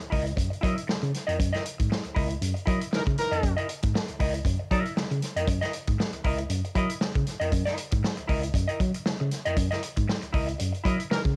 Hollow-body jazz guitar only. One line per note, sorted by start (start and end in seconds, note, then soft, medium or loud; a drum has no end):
0.01 muted hollow-body jazz guitar stroke soft
0.10 0.29 E4 medium
0.10 0.25 A#4 medium
0.10 0.23 D#5 medium
0.25 muted hollow-body jazz guitar stroke medium
0.36 muted hollow-body jazz guitar stroke soft
0.50 muted hollow-body jazz guitar stroke soft
0.61 0.80 E4 medium
0.61 0.75 A#4 loud
0.61 0.74 D#5 loud
0.75 muted hollow-body jazz guitar stroke soft
0.87 muted hollow-body jazz guitar stroke soft
1.02 muted hollow-body jazz guitar stroke soft
1.27 1.37 E4 medium
1.27 1.37 A#4 medium
1.27 1.38 D#5 medium
1.38 muted hollow-body jazz guitar stroke soft
1.52 1.63 E4 medium
1.52 1.63 A#4 medium
1.52 1.64 D#5 medium
1.64 muted hollow-body jazz guitar stroke soft
1.78 muted hollow-body jazz guitar stroke soft
1.90 muted hollow-body jazz guitar stroke soft
2.04 muted hollow-body jazz guitar stroke soft
2.15 2.33 E4 medium
2.15 2.29 A#4 medium
2.15 2.28 D#5 medium
2.29 muted hollow-body jazz guitar stroke soft
2.54 muted hollow-body jazz guitar stroke medium
2.66 2.84 E4 medium
2.66 2.81 A#4 medium
2.66 2.79 D#5 medium
2.80 muted hollow-body jazz guitar stroke soft
2.91 muted hollow-body jazz guitar stroke soft
3.06 muted hollow-body jazz guitar stroke medium
3.31 3.42 E4 medium
3.31 3.42 A#4 medium
3.31 3.43 D#5 medium
3.43 muted hollow-body jazz guitar stroke medium
3.57 3.67 E4 medium
3.57 3.68 A#4 medium
3.57 3.69 D#5 medium
3.68 muted hollow-body jazz guitar stroke soft
3.83 muted hollow-body jazz guitar stroke soft
3.94 muted hollow-body jazz guitar stroke soft
4.08 muted hollow-body jazz guitar stroke soft
4.20 4.38 E4 medium
4.20 4.34 A#4 medium
4.20 4.33 D#5 medium
4.34 muted hollow-body jazz guitar stroke soft
4.46 muted hollow-body jazz guitar stroke soft
4.59 muted hollow-body jazz guitar stroke soft
4.71 4.92 E4 medium
4.71 4.85 A#4 loud
4.71 4.84 D#5 medium
4.85 muted hollow-body jazz guitar stroke soft
4.96 muted hollow-body jazz guitar stroke soft
5.11 muted hollow-body jazz guitar stroke soft
5.36 5.47 E4 medium
5.36 5.47 A#4 medium
5.36 5.48 D#5 medium
5.48 muted hollow-body jazz guitar stroke soft
5.61 5.72 E4 medium
5.61 5.73 A#4 medium
5.61 5.74 D#5 loud
5.74 muted hollow-body jazz guitar stroke soft
5.87 muted hollow-body jazz guitar stroke soft
5.98 muted hollow-body jazz guitar stroke medium
6.13 muted hollow-body jazz guitar stroke soft
6.24 6.42 E4 medium
6.24 6.39 A#4 medium
6.24 6.38 D#5 medium
6.39 muted hollow-body jazz guitar stroke soft
6.50 muted hollow-body jazz guitar stroke soft
6.65 muted hollow-body jazz guitar stroke soft
6.75 6.93 E4 medium
6.75 6.90 A#4 loud
6.75 6.89 D#5 loud
6.90 muted hollow-body jazz guitar stroke soft
7.01 muted hollow-body jazz guitar stroke soft
7.14 muted hollow-body jazz guitar stroke soft
7.40 7.50 E4 medium
7.40 7.51 A#4 medium
7.40 7.52 D#5 medium
7.52 muted hollow-body jazz guitar stroke soft
7.65 7.76 E4 medium
7.65 7.77 A#4 medium
7.65 7.78 D#5 medium
7.78 muted hollow-body jazz guitar stroke soft
7.91 muted hollow-body jazz guitar stroke soft
8.03 muted hollow-body jazz guitar stroke soft
8.17 muted hollow-body jazz guitar stroke soft
8.27 8.46 E4 medium
8.27 8.43 A#4 medium
8.27 8.41 D#5 medium
8.42 muted hollow-body jazz guitar stroke soft
8.54 muted hollow-body jazz guitar stroke soft
8.68 8.79 E4 medium
8.68 8.80 A#4 medium
8.68 8.80 D#5 medium
8.80 muted hollow-body jazz guitar stroke soft
8.95 muted hollow-body jazz guitar stroke soft
9.06 muted hollow-body jazz guitar stroke soft
9.20 muted hollow-body jazz guitar stroke medium
9.45 9.56 E4 medium
9.45 9.56 A#4 medium
9.45 9.57 D#5 medium
9.57 muted hollow-body jazz guitar stroke soft
9.71 9.81 E4 medium
9.71 9.82 A#4 medium
9.71 9.83 D#5 medium
9.96 muted hollow-body jazz guitar stroke soft
10.08 muted hollow-body jazz guitar stroke soft
10.22 muted hollow-body jazz guitar stroke soft
10.33 10.51 E4 medium
10.33 10.47 A#4 medium
10.33 10.46 D#5 medium
10.48 muted hollow-body jazz guitar stroke soft
10.58 muted hollow-body jazz guitar stroke soft
10.73 muted hollow-body jazz guitar stroke soft
10.84 11.02 E4 medium
10.84 10.99 A#4 medium
10.84 10.97 D#5 medium
10.98 muted hollow-body jazz guitar stroke soft
11.10 muted hollow-body jazz guitar stroke soft